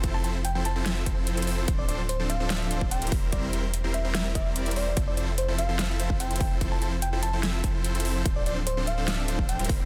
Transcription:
<<
  \new Staff \with { instrumentName = "FM electric piano" } { \time 4/4 \key f \major \tempo 4 = 146 r16 a''16 a''16 r16 g''16 g''16 a''8. r4. r16 | r16 d''16 d''16 r16 c''16 r16 f''4. g''16 r8. | d''16 r4 r16 e''8 e''16 r16 e''16 r8. d''8 | r16 d''16 d''16 r16 c''16 r16 f''4. g''16 r16 g''16 r16 |
r16 a''16 a''16 r16 g''16 g''16 a''8. r4. r16 | r16 d''16 d''16 r16 c''16 r16 f''4. g''16 r8. | }
  \new Staff \with { instrumentName = "Supersaw synth" } { \time 4/4 \key f \major <f c' e' a' c''>8 <f c' e' a' c''>16 r8 <f c' e' a' c''>16 r16 <f c' e' a' c''>16 <f c' e' a' e''>8 <f c' e' a' c''>8. <f c' e' a' c''>8 <f c' e' a' c''>16 | <f c' d' a' c''>8 <f c' d' a' c''>16 r8 <f c' d' a' c''>16 r16 <f c' d' a' c''>16 <f c' d' a' e''>8 <f c' d' a' c''>8. <g c' e' bes' c''>8 <g c' e' bes' c''>16 | <g c' e' bes' c''>8 <g c' e' bes' c''>16 r8 <g c' e' bes' c''>16 r16 <g c' e' bes' c''>16 <g c' e' bes' e''>8 <g c' e' bes' d''>16 <g c' e' bes' c''>16 <g c' e' bes' d''>8 <g c' e' bes' c''>16 r16 | <f c' e' a' c''>8 <f c' e' a' c''>16 r8 <f c' e' a' c''>16 r16 <f c' e' a' c''>16 <f c' e' a' e''>8 <f c' e' a' c''>8. <f c' e' a' c''>8 <f c' e' a' c''>16 |
<f c' e' a' c''>8 <f c' e' a' c''>16 r8 <f c' e' a' c''>16 r16 <f c' e' a' c''>16 <f c' e' a' e''>8 <f c' e' a' c''>8. <f c' e' a' c''>8 <f c' e' a' c''>16 | <f c' d' a' c''>8 <f c' d' a' c''>16 r8 <f c' d' a' c''>16 r16 <f c' d' a' c''>16 <f c' d' a' e''>8 <f c' d' a' c''>8. <g c' e' bes' c''>8 <g c' e' bes' c''>16 | }
  \new Staff \with { instrumentName = "Sub bass" } { \clef bass \time 4/4 \key f \major f,,1 | d,,2.~ d,,8 e,,8~ | e,,1 | f,,1~ |
f,,1 | d,,2.~ d,,8 e,,8 | }
  \new DrumStaff \with { instrumentName = "Drums" } \drummode { \time 4/4 <hh bd>8 hh8 hh8 hh8 <hh sn>8 <hh bd>8 hh16 hh32 hh32 hho8 | <hh bd>8 hh8 hh8 hh8 <hh sn>8 hh16 bd16 hh16 hh32 hh32 <hho bd>8 | <hh bd>8 hh8 hh8 hh8 <hh sn>8 <hh bd>8 hh16 hh32 hh32 hho8 | <hh bd>8 hh8 hh8 hh8 <hh sn>8 hh16 bd16 hh16 hh32 hh32 <hho bd>8 |
<hh bd>8 hh8 hh8 hh8 <hh sn>8 <hh bd>8 hh16 hh32 hh32 hho8 | <hh bd>8 hh8 hh8 hh8 <hh sn>8 hh16 bd16 hh16 hh32 hh32 <hho bd>8 | }
>>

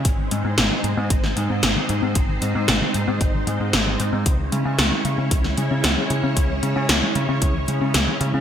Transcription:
<<
  \new Staff \with { instrumentName = "String machine" } { \time 4/4 \key cis \minor \tempo 4 = 114 <gis bis dis' bis'>1~ | <gis bis dis' bis'>1 | <gis cis' e' cis''>1~ | <gis cis' e' cis''>1 | }
  \new Staff \with { instrumentName = "Synth arpeggio sound" } { \clef bass \time 4/4 \key cis \minor bis,16 dis16 gis16 bis16 bis,16 dis16 gis16 bis16 bis,16 dis16 gis16 bis16 bis,16 dis16 gis16 bis16 | bis,16 dis16 gis16 bis16 bis,16 dis16 gis16 bis16 bis,16 dis16 gis16 bis16 bis,16 dis16 gis16 bis16 | cis16 e16 gis16 cis'16 cis16 e16 gis16 cis'16 cis16 e16 gis16 cis'16 cis16 e16 gis16 cis'16 | cis16 e16 gis16 cis'16 cis16 e16 gis16 cis'16 cis16 e16 gis16 cis'16 cis16 e16 gis16 cis'16 | }
  \new Staff \with { instrumentName = "Picked electric bass" } { \clef bass \time 4/4 \key cis \minor gis,,8 gis,16 gis,16 gis,,16 r16 gis,16 gis,16 gis,,8 gis,16 gis,16 gis,,16 r16 gis,16 gis,16 | gis,,8 gis,16 gis,16 gis,,16 r16 gis,16 gis,16 gis,,8 gis,16 gis,16 gis,,8 gis,16 gis,16 | cis,8 cis16 cis16 cis,16 r16 cis16 cis16 cis,8 cis16 cis16 cis,16 r16 cis16 cis16 | cis,8 cis16 cis16 cis,16 r16 cis16 cis16 cis,8 cis16 cis16 cis,16 r16 cis16 cis16 | }
  \new DrumStaff \with { instrumentName = "Drums" } \drummode { \time 4/4 <hh bd>8 hh8 <hh sn>8 hh8 <hh bd>16 sn16 hh8 <hh sn>8 hh8 | <hh bd>8 hh8 <hh sn>8 hh8 <hh bd>8 hh8 <hh sn>8 hh8 | <hh bd>8 hh8 <hh sn>8 hh8 <hh bd>16 sn16 hh8 <hh sn>8 hh8 | <hh bd>8 hh8 <hh sn>8 hh8 <hh bd>8 hh8 <hh sn>8 hh8 | }
>>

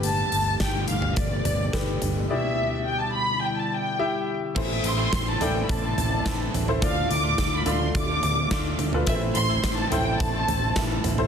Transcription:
<<
  \new Staff \with { instrumentName = "Violin section" } { \time 4/4 \key a \minor \tempo 4 = 106 a''4 g''8 f''8 d''4. r8 | e''4 g''16 a''16 b''8 g''16 a''16 g''4 r8 | e''8 c'''8. a''16 g''16. b''32 a''4. r8 | f''8 d'''8. b''16 c'''8 d'''4. r8 |
e''8 c'''8. a''16 g''8 a''4. r8 | }
  \new Staff \with { instrumentName = "Grand piano" } { \time 4/4 \key a \minor <g' a' b'>4~ <g' a' b'>16 r4. r16 <g' a' b'>8. r16 | <e' g' d''>4.~ <e' g' d''>16 r4 r16 <e' g' e''>8. r16 | <e' a' c''>4~ <e' a' c''>16 r16 <e' a' d''>4.~ <e' a' d''>16 r8 <e' a' c''>16 | <f' a' d''>4~ <f' a' d''>16 r16 <f' a' d''>4.~ <f' a' d''>16 r8 <f' a' b'>16 |
<e' a' b' c''>4~ <e' a' b' c''>16 r16 <e' a' c''>4.~ <e' a' c''>16 r8 <e' a' c''>16 | }
  \new Staff \with { instrumentName = "Grand piano" } { \clef bass \time 4/4 \key a \minor <g, d>4 r2. | b,4. r2 r8 | <a, e>4. r2 r8 | a,4. r2 r8 |
<a, e>4. r2 r8 | }
  \new Staff \with { instrumentName = "Analog synth pad" } { \time 4/4 \key a \minor << { <b, g'>1 | <d e'>1 | <c e'>1 | <d f'>1 |
<c e'>1 | } \\ { a1 | g1 | a1~ | a1~ |
a1 | } >> }
  \new Staff \with { instrumentName = "Clean electric guitar" } { \time 4/4 \key a \minor r1 | r1 | <e a c' e'>8. <a, e a c' e'>8. <a, e a c' e'>8. <a c' e'>8. <e a c' e'>4 | <d a d' f'>8. <d a d' f'>8. <d a d' f'>8. <a d' f'>8. <d a d' f'>4 |
<e a c' e'>8. <a, e a c' e'>8. <a, e a c' e'>8. <a c' e'>8. <e a c' e'>4 | }
  \new Staff \with { instrumentName = "Fingered electric bass" } { \clef bass \time 4/4 \key a \minor g,,8 g,,8 g,,8 g,,8 g,,8 g,,8 g,,8 g,,8 | r1 | a,,8 a,,8 a,,8 a,,8 a,,8 a,,8 a,,8 a,,8 | d,8 d,8 d,8 d,8 d,8 d,8 d,8 d,8 |
a,,8 a,,8 a,,8 a,,8 a,,8 a,,8 a,,8 a,,8 | }
  \new DrumStaff \with { instrumentName = "Drums" } \drummode { \time 4/4 hh8 hh8 <hh bd sn>8 hh16 tomfh16 <hh bd>8 <hh tomfh>8 <hh bd sn>8 <hh tomfh>8 | r4 r4 r4 r4 | <cymc bd>8 hh8 <hh bd sn>8 <hh tomfh>8 <hh bd>8 <hh tomfh>8 <hh bd sn>8 <hh tomfh>16 tomfh16 | <hh bd>8 hh8 <hh bd sn>8 <hh tomfh>8 <hh bd>8 <hh tomfh>8 <hh bd sn>8 <hh tomfh>16 tomfh16 |
<hh bd>8 hh8 <hh bd sn>8 <hh tomfh>8 <hh bd>8 <hh tomfh>8 <hh bd sn>8 <hh tomfh>16 tomfh16 | }
>>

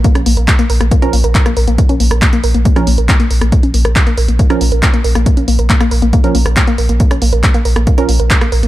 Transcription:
<<
  \new Staff \with { instrumentName = "Synth stab" } { \time 4/4 \key bes \minor \tempo 4 = 138 r2 r16 <f des' bes'>16 r4. | r2 r16 <f des' bes'>16 r4. | r2 r16 <f des' bes'>16 r4. | r2 r16 <f des' bes'>16 r4. |
r2 r16 <f des' bes'>16 r4. | }
  \new Staff \with { instrumentName = "Synth arpeggio sound" } { \time 4/4 \key bes \minor bes16 des'16 bes16 bes'16 bes16 bes16 bes'16 bes16 bes16 des'16 bes16 bes'16 bes16 bes16 bes'16 bes16 | bes16 des'16 bes16 bes'16 bes16 bes16 bes'16 bes16 bes16 des'16 bes16 bes'16 bes16 bes16 bes'16 bes16 | bes16 des'16 bes16 bes'16 bes16 bes16 bes'16 bes16 bes16 des'16 bes16 bes'16 bes16 bes16 bes'16 bes16 | bes16 des'16 bes16 bes'16 bes16 bes16 bes'16 bes16 bes16 des'16 bes16 bes'16 bes16 bes16 bes'16 bes16 |
bes16 des'16 bes16 bes'16 bes16 bes16 bes'16 bes16 bes16 des'16 bes16 bes'16 bes16 bes16 bes'16 bes16 | }
  \new Staff \with { instrumentName = "Sub bass" } { \clef bass \time 4/4 \key bes \minor r16 bes,,16 bes,,16 bes,,16 r16 bes,,16 bes,,16 bes,,16 r16 bes,,16 bes,,16 bes,,16 r16 bes,,16 bes,,16 bes,,16 | r16 bes,,16 bes,,16 bes,,16 r16 bes,,16 bes,,16 bes,,16 r16 bes,,16 bes,,16 bes,,16 r16 bes,,16 bes,,16 bes,,16 | r16 bes,,16 bes,,16 bes,,16 r16 bes,,16 bes,,16 bes,,16 r16 bes,,16 bes,,16 bes,,16 r16 bes,,16 bes,,16 bes,,16 | r16 bes,,16 bes,,16 bes,,16 r16 bes,,16 bes,,16 bes,,16 r16 bes,,16 bes,,16 bes,,16 r16 bes,,16 bes,,16 bes,,16 |
r16 bes,,16 bes,,16 bes,,16 r16 bes,,16 bes,,16 bes,,16 r16 bes,,16 bes,,16 bes,,16 r16 bes,,16 bes,,16 bes,,16 | }
  \new DrumStaff \with { instrumentName = "Drums" } \drummode { \time 4/4 <hh bd>16 <hh ss>16 hho16 hh16 <hc hh bd>16 hh16 hho16 <hh ss>16 <hh bd>16 hh16 hho16 hh16 <hc hh bd>16 <hh ss>16 hho16 hh16 | <hh bd>16 hh16 hho16 <hh ss>16 <hc hh bd>16 hh16 hho16 hh16 <hh bd>16 <hh ss>16 hho16 hh16 <hc hh bd>16 hh16 hho16 <hh ss>16 | <hh bd>16 hh16 hho16 <hh ss>16 <hc hh bd>16 hh16 hho16 hh16 <hh bd>16 <hh ss>16 hho16 hh16 <hc hh bd>16 hh16 hho16 <hh ss>16 | <hh bd>16 hh16 hho16 hh16 <hc hh bd>16 <hh ss>16 hho16 hh16 <hh bd>16 hh16 hho16 <hh ss>16 <hc hh bd>16 hh16 hho16 hh16 |
<hh bd>16 <hh ss>16 hho16 hh16 <hc hh bd>16 hh16 hho16 <hh ss>16 <hh bd>16 hh16 hho16 hh16 <hc hh bd>16 <hh ss>16 hho16 hh16 | }
>>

